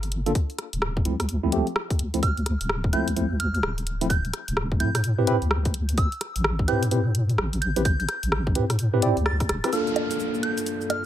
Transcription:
Already playing: G1
0.03 closed hi-hat
0.12 closed hi-hat
0.26 A#3 D4 F4 A4, closed hi-hat
0.35 kick, closed hi-hat
0.50 closed hi-hat
0.59 cross-stick, closed hi-hat
0.73 D1, closed hi-hat
0.82 cross-stick
0.97 kick
1.05 D2 F3 A3 C4 E4, closed hi-hat
1.20 cross-stick, closed hi-hat
1.29 closed hi-hat
1.44 F3 A3 C4 E4
1.52 F3 A3 C4 G4, closed hi-hat
1.67 closed hi-hat
1.76 cross-stick
1.90 kick, closed hi-hat
1.99 D2, closed hi-hat
2.14 F3 A3 C4 E4, closed hi-hat
2.23 F6, kick, closed hi-hat
2.37 closed hi-hat
2.46 cross-stick, closed hi-hat
2.61 D1, closed hi-hat
2.69 cross-stick
2.84 kick
2.93 D2 F3 A3 C4 E4 G6, closed hi-hat
3.08 closed hi-hat
3.16 F3 A3 C4 E4, closed hi-hat
3.40 F6, closed hi-hat
3.54 F6, closed hi-hat
3.63 D1, cross-stick
3.78 closed hi-hat
3.87 closed hi-hat
4.01 F3 A3 C4 E4, closed hi-hat
4.10 G6, kick, closed hi-hat
4.25 closed hi-hat
4.33 cross-stick, closed hi-hat
4.48 D1, closed hi-hat
4.57 cross-stick
4.72 kick
4.80 A2 F3 A3 C4 E4 G6, closed hi-hat
4.95 G6, cross-stick, closed hi-hat
5.04 closed hi-hat
5.18 C4 E4 G4 B4
5.27 C4 E4 G4 B4, closed hi-hat
5.42 D2, closed hi-hat
5.51 cross-stick
5.65 kick, closed hi-hat
5.74 closed hi-hat
5.89 closed hi-hat
5.98 E6, kick, closed hi-hat
6.12 closed hi-hat
6.21 cross-stick, closed hi-hat
6.36 A1, closed hi-hat
6.44 cross-stick
6.59 kick
6.68 A2 C4 E4 G4 B4 G6, closed hi-hat
6.83 closed hi-hat
6.91 C4 E4 G4 B4, closed hi-hat
7.15 closed hi-hat
7.29 closed hi-hat
7.38 A1, cross-stick
7.53 closed hi-hat
7.62 G6, closed hi-hat
7.76 C4 E4 G4 B4, closed hi-hat
7.85 G6, kick, closed hi-hat
8.00 G6, closed hi-hat
8.08 G6, cross-stick, closed hi-hat
8.23 A1, closed hi-hat
8.32 cross-stick
8.47 kick, cross-stick
8.55 A2 C4 E4 G4 B4, closed hi-hat
8.70 cross-stick, closed hi-hat
8.79 closed hi-hat
8.94 C4 E4 G4 B4
9.02 C4 E4 G4 D5, closed hi-hat
9.17 D2, closed hi-hat
9.26 A6, cross-stick
9.40 kick, cross-stick, closed hi-hat
9.49 E1, cross-stick, closed hi-hat
9.64 C4 E4 G4 B4, cross-stick, closed hi-hat
9.73 G2 A#3 D4 F4 A4 F6, closed hi-hat, downlifter, shaker
9.87 closed hi-hat, shaker
9.96 closed hi-hat, high bongo
10.11 closed hi-hat, shaker
10.20 shaker
10.34 shaker
10.43 G6, closed hi-hat
10.58 closed hi-hat, shaker
10.66 closed hi-hat, shaker
10.81 shaker
10.90 F6, closed hi-hat, high bongo

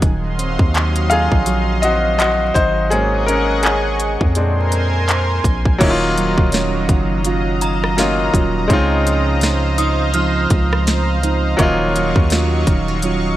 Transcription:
Already playing: F#3 C#4
0.02 D#1 D#3 F#3 D#5 F5 C6, kick, closed hi-hat
0.39 C4, closed hi-hat
0.59 D#2, kick
0.75 clap, closed hi-hat
0.96 closed hi-hat
1.10 F#3 C4 F4 G#4 F5, closed hi-hat
1.32 A#1, kick
1.46 F#3, closed hi-hat
1.82 C4 F#4 D#5, closed hi-hat
2.18 F#4 D#5, clap, closed hi-hat
2.54 G#1 D#4 C5, kick, closed hi-hat
2.90 G#2 F#3 A#3 C#4 G#4 D#5 F#5 C#6, closed hi-hat
3.26 C#4 A#4, closed hi-hat
3.63 C#4 G#4, clap, closed hi-hat
4.00 closed hi-hat
4.21 F2, kick
4.35 A#2 G#3 C4 D4 A#4 C5 G#5 C6, closed hi-hat
4.72 C4, closed hi-hat
5.09 clap, closed hi-hat
5.44 A#1, kick, closed hi-hat
5.65 A#1, kick
5.78 D#1 D#3 F#3 A#3 C#4 F4 D#5 F5 A#5 C#6, kick, closed hi-hat, crash
5.83 D#4 E4
5.90 F4
6.17 F#3, closed hi-hat
6.38 D#1, kick
6.52 F#3 C#4 F4, snare, closed hi-hat
6.89 F#1 F4, kick, closed hi-hat
7.25 F#3 C#4 F4, closed hi-hat
7.61 A#5, closed hi-hat
7.84 cross-stick
7.97 F#3 A#3 C#4 D#4 F4, snare, closed hi-hat
8.34 D#1 F#3 C#4 F4, kick, closed hi-hat
8.68 C#2 C#3 G#3 C4 C#4 D#4 C5, kick, closed hi-hat
8.72 D#4 F4
9.06 F3, closed hi-hat
9.41 F3 C4 D#4, snare, closed hi-hat
9.78 D#4 D#6, closed hi-hat
10.14 F3 C4 D#4 F6, closed hi-hat
10.50 C#2, kick, closed hi-hat
10.73 cross-stick
10.86 C4, snare, closed hi-hat
11.23 F3 C4 D#4, closed hi-hat
11.57 D#1 D#3 F#3 A#3 C#4 F4 D#5 C#6, kick, closed hi-hat
11.61 D#4 F4
11.95 F#3, closed hi-hat
12.16 D#2, kick
12.30 F#3 C#4 F4, snare, closed hi-hat
12.67 D#1 D#4, kick, closed hi-hat
12.88 F4
13.02 F#3 C#4 F4, closed hi-hat

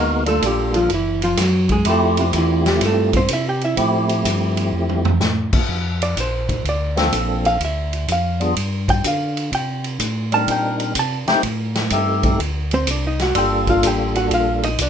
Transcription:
Already playing: D2 G#3 A#3 B3 D#4 F#4 A#4
0.26 G3 A3 A#3 D4 F4 A4, ride
0.42 A#1, kick, hi-hat pedal, ride
0.46 G3 G4
0.74 F3 F4, ride
0.89 F#1, kick, ride
0.94 E3 E4
1.22 F3 F4, ride
1.37 F#2 F#3, kick, snare, hi-hat pedal, ride
1.41 F#4
1.69 G#3 G#4, kick, ride
1.85 F2 A3 C4 E4 F4 G4, kick, ride
1.90 A3 A4
2.17 C3 C4, ride
2.33 E2, kick, hi-hat pedal, ride
2.38 E3 E4
2.66 G3 G4, snare, ride
2.81 G2, kick, snare, ride
2.86 A3 A4
3.13 C4 C5, kick, ride
3.28 C3, kick, hi-hat pedal, ride
3.33 E4 E5
3.48 G4 G5
3.61 E4 E5, ride
3.77 A2 F3 A3 C4 E4 G4, kick, ride
4.09 ride
4.25 G2, kick, hi-hat pedal, ride
4.57 ride
4.73 F2
4.89 floor tom
5.05 floor tom
5.20 A2, snare, hi-hat pedal
5.53 A2, kick, crash
5.69 F2, kick
6.02 D5, ride
6.17 A#1 C5, kick, hi-hat pedal, ride
6.49 kick, ride
6.64 D2, kick, ride
6.69 D5
6.96 F3 A#3 C4 D4 A4, snare, ride
7.12 A#1, kick, hi-hat pedal, ride
7.45 F5, ride
7.60 D2, kick, ride
7.65 E5
7.93 ride
8.08 F2, kick, hi-hat pedal, ride
8.12 F5
8.40 G3 B3 D4 F4 G#4, ride
8.56 G2, kick, ride
8.88 G5, kick, ride
9.04 D3 F5, kick, hi-hat pedal, ride
9.37 ride
9.52 C3 G5, kick, ride
9.84 ride
9.99 A2, kick, hi-hat pedal, ride
10.32 G3 C4 D4 D#4 A#4 A5, ride
10.48 A#2 G5, kick, ride
10.80 ride
10.95 C3, kick, hi-hat pedal, ride
10.99 A5
11.28 C3 A3 C4 D#4 G4 C5, snare, ride
11.43 A2, kick, ride
11.75 snare, ride
11.90 G2 A3 C4 D#4 G4 A4, kick, hi-hat pedal, ride
12.23 kick, ride
12.39 D2, kick, ride
12.71 C4 C5, ride
12.87 C2 D4 D5, kick, hi-hat pedal, ride
13.07 D#4 D#5
13.19 F#4 F#5, snare, ride
13.35 G1 G3 A#3 D4 F4 G4 A4 G5, kick, ride
13.67 F4 F5, kick, ride
13.83 A1 G4, kick, hi-hat pedal, ride
13.87 G5
14.15 F#4 F#5, ride
14.31 A#1 F4 F5, kick, ride
14.63 D#4 D#5, ride
14.79 C2 D4 D5, kick, hi-hat pedal, ride

